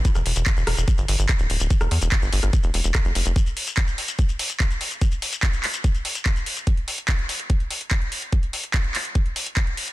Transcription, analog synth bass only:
\new Staff \with { instrumentName = "Analog synth bass" } { \clef bass \time 4/4 \key e \phrygian \tempo 4 = 145 r16 e,,16 e,,16 e,,16 r16 e,,16 e,,16 e,,16 r16 g,,16 g,,16 g,,16 r16 d,,16 d,,16 d,,16 | r16 e,,16 e,16 e,,16 r16 g,,16 g,,16 g,,16 r16 e,,16 e,,16 e,,16 r16 f,,16 f,,16 f,,16 | r1 | r1 |
r1 | r1 | }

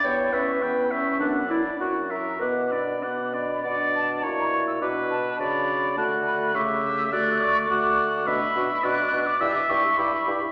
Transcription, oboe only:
\new Staff \with { instrumentName = "Oboe" } { \time 2/4 \key b \minor \tempo 4 = 104 g''8 e''8 g''8 e''8 | fis''8 d''8 fis''8 e''8 | fis''8 d''8 fis''8 d''8 | d''4 cis''4 |
b'4 d''4 | fis''4 e''4 | d''4 fis''4 | e''4 d''4 |
e''4 e''8 r8 | }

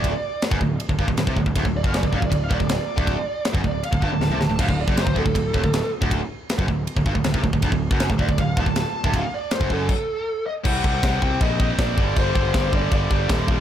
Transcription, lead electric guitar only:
\new Staff \with { instrumentName = "Lead electric guitar" } { \time 4/4 \tempo 4 = 158 d''4 r2. | r8 d''16 f''16 d''16 d''16 f''16 d''16 d''16 f''16 d''8 d''4~ | d''4 r8 d''8 f''8 a''4. | f''8 d''8 c''8 a'2 r8 |
r1 | r4. d''8 f''8 a''4. | f''8 d''8 c''8 a'2 ees''8 | fis''4. g''8 ees''8 ees''8 d''4 |
c''4. d''8 d''4 r4 | }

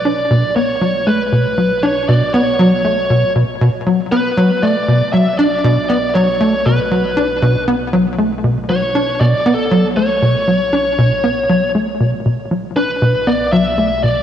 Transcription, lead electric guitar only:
\new Staff \with { instrumentName = "Lead electric guitar" } { \time 4/4 \key b \minor \tempo 4 = 118 d''4 cis''4 b'4. cis''8 | d''8 cis''2 r4. | b'4 d''4 e''8 d''4 d''8 | cis''4 b'2 r4 |
r4 cis''4 \tuplet 3/2 { d''4 a'8~ } a'8 cis''8~ | cis''2. r4 | r4 b'4 d''8 e''4 d''8 | }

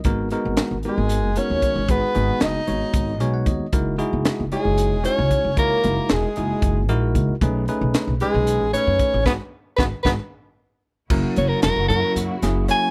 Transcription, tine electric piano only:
\new Staff \with { instrumentName = "Tine electric piano" } { \time 7/8 \key fis \mixolydian \tempo 4 = 114 << { r2. r8 | r2 r8 gis''16 fis''16 dis''8 | r2. r8 | r2. r8 |
r2. r8 | <dis' fis' gis'>8 r8 <dis' fis' gis'>8 <dis' fis' gis'>8 r4. | r2. r8 | } \\ { <gis b dis' fis' ais'>8 <gis b dis' fis' ais'>4 <gis b dis' fis' ais'>4 <gis b dis' fis' ais'>4 | <gis b dis' fis' gis'>8 <gis b dis' fis' gis'>4 <gis b dis' fis' cis''>4 <gis b dis' fis' cis''>4 | <gis dis' e' fis' ais'>8 <gis dis' e' fis' gis'>4 <gis dis' e' fis' cis''>4 <gis dis' e' fis' cis''>4 | <gis dis' e' fis' cis''>8 <gis dis' e' fis' ais'>4 <gis dis' e' fis' gis'>4 <gis dis' e' fis' ais'>4 |
<a cis' dis' gis' b'>8 <a cis' dis' gis' b'>4 <gis cis' dis' gis' b'>4 <a cis' dis' gis' b'>4 | r2. r8 | <fis ais cis' e' ais'>4. <fis ais cis' e' ais'>4 <fis ais cis' e' gis'>8 <fis ais cis' e' cis''>8 | } >> }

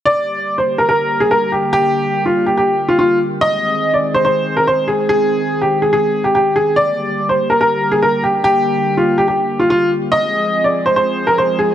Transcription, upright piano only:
\new Staff \with { instrumentName = "Upright piano" } { \time 4/4 \key g \phrygian \tempo 4 = 143 d''4~ d''16 c''8 bes'16 bes'8. aes'16 bes'8 g'8 | g'4~ g'16 f'8 g'16 g'8. f'16 f'8 r8 | ees''4~ ees''16 d''8 c''16 c''8. bes'16 c''8 aes'8 | aes'4~ aes'16 g'8 aes'16 aes'8. g'16 g'8 aes'8 |
d''4~ d''16 c''8 bes'16 bes'8. aes'16 bes'8 g'8 | g'4~ g'16 f'8 g'16 g'8. f'16 f'8 r8 | ees''4~ ees''16 d''8 c''16 c''8. bes'16 c''8 aes'8 | }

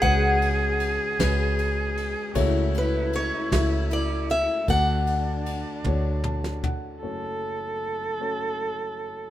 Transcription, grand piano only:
<<
  \new Staff \with { instrumentName = "Grand piano" } { \time 6/8 \key fis \minor \tempo 4. = 51 << { r2. | r2. | r2 a''8 fis''8 | r2. | } \\ { <gis cis' fis' b'>4 r8 <gis cis' fis' b'>4 r8 | <a e' fis' cis''>4 r8 <a e' fis' e''>4 r8 | <a d' fis' d''>4 r8 <a d' fis' cis''>4 r8 | <a cis' fis' cis''>4 r8 <a cis' fis' cis''>4 r8 | } >> }
  \new Staff \with { instrumentName = "Grand piano" } { \clef bass \time 6/8 \key fis \minor <cis, cis>2. | <cis, cis>2. | <d, d>2. | <fis,, fis,>2. | }
>>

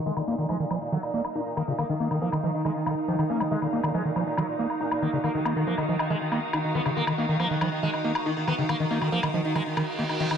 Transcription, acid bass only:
\new Staff \with { instrumentName = "Acid bass" } { \clef bass \time 4/4 \key ees \minor \tempo 4 = 139 ees16 ees16 bes16 ees16 f16 ees16 f16 r16 ees16 r16 bes16 r16 ees'16 r16 ees16 des16 | ees16 ees16 bes16 ees16 f16 ees16 f16 r16 ees16 r16 ees16 r16 f16 ees16 bes16 des16 | ees16 ees16 bes16 ees16 f16 ees16 f16 r16 ees16 r16 bes16 r16 ees'16 r16 ees16 des16 | ees16 ees16 bes16 ees16 f16 ees16 f16 r16 ees16 r16 bes16 r16 ees'16 r16 ees16 des16 |
ees16 ees16 bes16 ees16 f16 ees16 f16 r16 ees16 r16 bes16 r16 ees'16 r16 ees16 des16 | ees16 ees16 bes16 ees16 f16 ees16 f16 r16 ees16 r16 ees16 r16 bes16 r16 ees16 ees16 | }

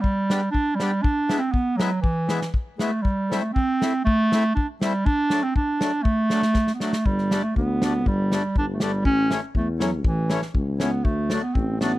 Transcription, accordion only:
\new Staff \with { instrumentName = "Accordion" } { \time 2/4 \key g \major \tempo 4 = 120 r8 <b d' g'>8 r8 <b d' g'>8 | r8 <gis b e'>8 r8 <gis b e'>8 | r8 <gis b e'>8 r8 <gis b e'>8 | r8 <a c' e'>8 r8 <a c' e'>8 |
r8 <a c' e'>8 r8 <a c' e'>8 | r8 <fis a d'>8 r8 <fis a d'>8 | r8 <fis a d'>8 r8 <fis a d'>8 | r8 <g a d'>8 r8 <g a d'>8 |
r8 <g a d'>8 r8 <g a d'>8 | r8 <e a cis'>8 r8 <e a cis'>8 | r8 <e a cis'>8 r8 <e a cis'>8 | r8 <fis a d'>8 r8 <fis a d'>8 | }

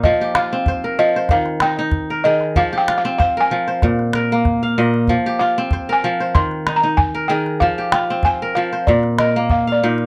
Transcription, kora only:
<<
  \new Staff \with { instrumentName = "Kora" } { \time 4/4 \key f \minor \tempo 4 = 95 ees'16 g'16 f'8 c''16 bes'8 c''8 r16 ees'8. bes'16 aes'8~ | aes'16 g'16 f'8 c''16 bes'8 c''8 r16 bes'8. f''16 ees''8~ | ees''16 g'16 f'8 c''16 bes'8 c''8 r16 ees'8. bes'16 aes'8~ | aes'16 g'16 f'8 c''16 bes'8 c''8 r16 bes'8. f''16 ees'8 | }
  \new Staff \with { instrumentName = "Kora" } { \clef bass \time 4/4 \key f \minor f8 r16 c'8 r16 f8 ees8 r16 ees'8 r16 ees8 | f8 r16 c'8 r16 f8 bes,8 r16 bes8 r16 bes,8 | f8 r16 c'8 r16 f8 ees8 r16 ees'8 r16 ees8 | f8 r16 c'8 r16 f8 bes,8 r16 bes8 r16 bes,8 | }
>>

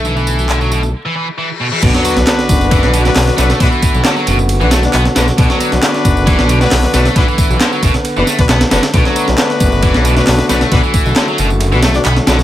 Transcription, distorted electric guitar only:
\new Staff \with { instrumentName = "Distorted electric guitar" } { \clef bass \time 4/4 \key b \minor \tempo 4 = 135 e16 e8. d16 fis16 b,16 r8 e16 e16 r16 e16 r16 b,16 e16 | b,16 fis16 fis16 r4 r16 e8 b,16 a,16 r8 a8 | e16 e8. d16 fis16 b,16 r8 e16 a16 r16 b16 r16 d16 r16 | b,16 fis16 fis16 r4 r16 e8 b,16 a,16 r8 a8 |
e16 e8. d16 fis16 b,16 r8 e16 a16 r16 b16 r16 d16 r16 | b,16 fis16 fis16 r4 r16 e8 b,16 a,16 r8 a8 | e16 e8. d16 fis16 b,16 r8 e16 a16 r16 b16 r16 d16 r16 | }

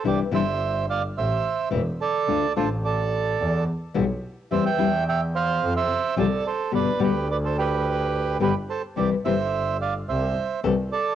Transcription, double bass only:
\new Staff \with { instrumentName = "Double bass" } { \clef bass \time 4/4 \key c \major \tempo 4 = 108 c,8 g,,4. a,,8 r8 e,,8 r8 | d,8 a,,4. e,8 r8 b,,8 r8 | e,8 e,4. f,8 r8 c,8 r8 | g,,8 d,2~ d,8 g,,8 r8 |
c,8 g,,4. c,8 r8 c,8 r8 | }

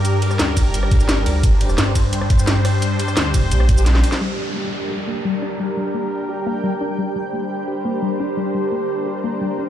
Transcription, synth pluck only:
\new Staff \with { instrumentName = "Synth pluck" } { \time 4/4 \key g \minor \tempo 4 = 173 r1 | r1 | r1 | g8 g8 bes8 r8 g'8 bes8 g8 d'8 |
g8 g8 bes8 r8 g'8 bes8 g8 d'8 | g8 g8 bes8 r8 g'8 bes8 g8 d'8 | g8 g8 bes8 r8 g'8 bes8 g8 d'8 | }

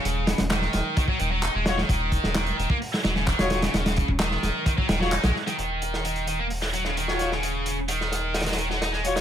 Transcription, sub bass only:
\new Staff \with { instrumentName = "Sub bass" } { \clef bass \time 4/4 \key ees \minor \tempo 4 = 130 ees,,8 r16 ees,,8 r16 ees,,16 r8. ees,,8 r16 ees,,8 r16 | ees,,8 r16 ees,,8 r16 ees,,16 r8. ees,,8 r16 ees,,8 r16 | ees,,8 r16 ees,,8 r16 ees,,16 r8. ees,,8 r16 bes,,16 r8 | ees,,1~ |
ees,,1 | }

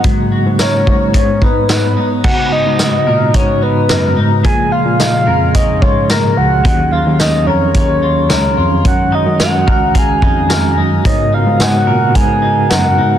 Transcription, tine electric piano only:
\new Staff \with { instrumentName = "Tine electric piano" } { \clef bass \time 4/4 \key gis \dorian \tempo 4 = 109 gis,8. gis,8. gis,8 gis,8 gis,4 r8 | gis,8. gis,8. ais,8 gis,4 fis,8 gis,8 | ais,8. ais,8. eis,4 gis,4 cis,8 | dis,8. dis,8. eis,8 dis,4 cis,8 eis,8 |
fis,8. fis,8. cis,4 eis,4 fis,8 | gis,8. gis,8. ais,8 gis,4 fis,8 gis,8 | }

